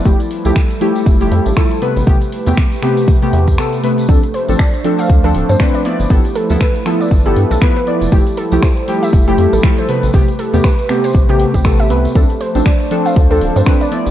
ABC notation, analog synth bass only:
X:1
M:4/4
L:1/16
Q:"Swing 16ths" 1/4=119
K:Am
V:1 name="Analog synth bass" clef=bass
F,,, z2 C,, z4 F,,,2 F,, A,,, z3 A,,, | A,,, z2 E,, z6 E,,2 z4 | D,, z2 A,,, z4 D,,2 D,,, G,, z3 G,,, | G,,, z2 D,, z4 G,,,2 G,, B,,, z3 F,,, |
F,,, z2 C,, z4 F,,,2 F,, A,,, z3 A,,, | A,,, z2 E,, z4 A,,,2 z A,,,3 C,, z | D,, z2 A,,, z4 D,,2 D,,, G,, z3 G,,, |]